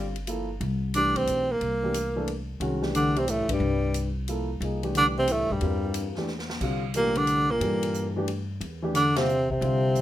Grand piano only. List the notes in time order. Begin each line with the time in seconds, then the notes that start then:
Already playing: D3 G3 C4 F4
0.27 F3 A#3 E4 A4
0.95 E3 A3 D4 G4
1.83 E3 A3 D4 G4
2.16 E3 A3 D4 A4
2.60 D#3 G#3 C#4 F#4
2.82 E3 A3 D4 G4
4.29 F3 A#3 E4 A4
4.62 F3 A#3 D#4 G#4
4.83 E3 A3 D4 G4
5.62 G3 C4 F4 A#4
6.17 E3 A3 D4 G4
6.61 D3 G3 C4 F4
6.95 E3 A3 D4 G4
7.60 E3 D4 G4 A4
8.16 E3 A3 D4 G4
8.82 E3 A3 D4 G4
9.16 D3 G3 C4 F4
9.62 D3 G3 C4 F4